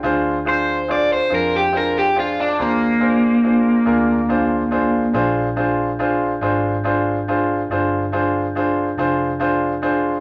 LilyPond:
<<
  \new Staff \with { instrumentName = "Overdriven electric guitar" } { \time 12/8 \key bes \mixolydian \tempo 4. = 47 r8 c''8 d''16 c''16 bes'16 g'16 bes'16 g'16 f'16 d'16 bes2. | r1. | }
  \new Staff \with { instrumentName = "Grand piano" } { \time 12/8 \key bes \mixolydian <d' f' aes' c''>8 <d' f' aes' c''>8 <d' f' aes' c''>8 <d' f' aes' c''>8 <d' f' aes' c''>8 <d' f' aes' c''>8 <d' f' aes' c''>8 <d' f' aes' c''>8 <d' f' aes' c''>8 <d' f' aes' bes'>8 <d' f' aes' c''>8 <d' f' aes' c''>8 | <d' f' aes' c''>8 <d' f' aes' c''>8 <d' f' aes' c''>8 <d' f' aes' c''>8 <d' f' aes' c''>8 <d' f' aes' c''>8 <d' f' aes' c''>8 <d' f' aes' c''>8 <d' f' aes' c''>8 <d' f' aes' c''>8 <d' f' aes' c''>8 <d' f' aes' c''>8 | }
  \new Staff \with { instrumentName = "Fingered electric bass" } { \clef bass \time 12/8 \key bes \mixolydian d,4. f,4. ees,4. d,4. | bes,,4. aes,,4. g,,4. f,,4. | }
>>